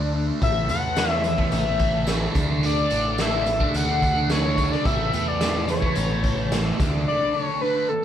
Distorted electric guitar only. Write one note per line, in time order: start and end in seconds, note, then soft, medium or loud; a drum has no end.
0.00 0.12 D3 medium
0.00 0.14 A3 medium
0.00 0.15 D4 medium
0.13 0.40 D3 medium
0.13 0.30 A3 medium
0.13 0.26 D4 medium
0.27 0.42 A3 soft
0.27 0.40 D4 medium
0.41 0.67 A2 medium
0.41 0.69 E3 medium
0.41 0.71 A3 medium
0.68 0.95 A2 medium
0.68 0.97 E3 medium
0.68 0.99 A3 medium
0.96 1.23 A2 medium
0.96 1.12 E3 medium
0.96 1.10 A3 medium
1.10 1.24 E3 medium
1.10 1.25 A3 medium
1.25 muted distorted electric guitar stroke soft
1.37 1.67 E3 soft
1.37 1.65 A3 medium
1.66 1.95 E3 medium
1.66 1.93 A3 medium
1.93 2.08 E3 medium
1.93 2.10 A3 medium
2.07 2.34 A2 medium
2.07 2.23 E3 loud
2.07 2.21 A3 medium
2.21 2.35 E3 medium
2.21 2.37 A3 medium
2.35 2.62 D3 medium
2.35 2.52 A3 medium
2.35 2.48 D4 medium
2.49 2.65 A3 medium
2.49 2.65 D4 medium
2.63 2.89 D3 medium
2.63 2.92 A3 medium
2.63 2.93 D4 medium
2.91 3.17 D3 medium
2.91 3.20 A3 medium
2.91 3.20 D4 medium
3.18 3.46 D3 medium
3.18 3.35 A3 medium
3.18 3.31 D4 medium
3.32 3.47 A3 medium
3.32 3.47 D4 medium
3.47 muted distorted electric guitar stroke soft
3.60 3.91 A3 soft
3.60 3.87 D4 medium
3.88 4.19 A3 medium
3.88 4.14 D4 medium
4.16 4.30 A3 medium
4.16 4.31 D4 medium
4.29 4.56 D3 medium
4.29 4.46 A3 medium
4.29 4.42 D4 loud
4.43 4.59 A3 medium
4.43 4.60 D4 medium
4.57 4.84 D3 medium
4.57 4.74 A3 medium
4.57 4.70 D4 medium
4.71 4.87 A3 medium
4.71 4.83 D4 medium
4.85 5.11 A2 medium
4.85 5.13 E3 medium
4.85 5.15 A3 loud
5.12 5.38 A2 medium
5.12 5.40 E3 medium
5.12 5.43 A3 medium
5.40 5.68 A2 medium
5.40 5.56 E3 medium
5.40 5.54 A3 loud
5.54 5.68 E3 medium
5.54 5.69 A3 medium
5.69 muted distorted electric guitar stroke soft
5.82 6.11 E3 soft
5.82 6.09 A3 medium
6.09 6.39 E3 medium
6.09 6.37 A3 medium
6.37 6.52 E3 medium
6.37 6.54 A3 medium
6.51 6.78 A2 medium
6.51 6.67 E3 medium
6.51 6.64 A3 loud
6.65 6.79 E3 medium
6.65 6.80 A3 medium
6.78 7.05 D3 medium
6.78 6.94 A3 medium
6.78 6.91 D4 medium
6.92 7.07 A3 medium
6.92 7.08 D4 medium
7.06 7.32 D3 medium
7.06 7.34 A3 medium
7.06 7.36 D4 medium
7.34 7.61 D3 medium
7.34 7.63 A3 medium
7.34 7.64 D4 medium
7.62 7.89 D3 medium
7.62 7.78 A3 medium
7.62 7.74 D4 loud
7.76 7.89 A3 medium
7.76 7.90 D4 medium
7.90 muted distorted electric guitar stroke soft